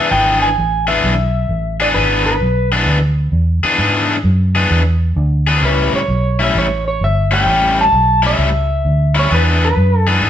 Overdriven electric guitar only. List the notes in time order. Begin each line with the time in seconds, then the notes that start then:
Already playing: E3 B3 D4 G#4
0.11 E3 B3 D4 G#4
0.87 E3 B3 D4 G#4
1.80 E3 B3 D4 G#4
1.96 E3 B3 D4 G#4
2.72 E3 B3 D4 G#4
3.63 E3 B3 D4 G#4
3.79 E3 B3 D4 G#4
4.55 E3 B3 D4 G#4
5.47 E3 B3 D4 G#4
5.63 A2 G3 C#4 E4
6.39 A2 G3 C#4 E4
7.31 A2 G3 C#4 E4
7.47 A2 G3 C#4 E4
8.22 A2 G3 C#4 E4
9.15 A2 G3 C#4 E4
9.30 E3 B3 D4 G#4
10.07 E3 B3 D4 G#4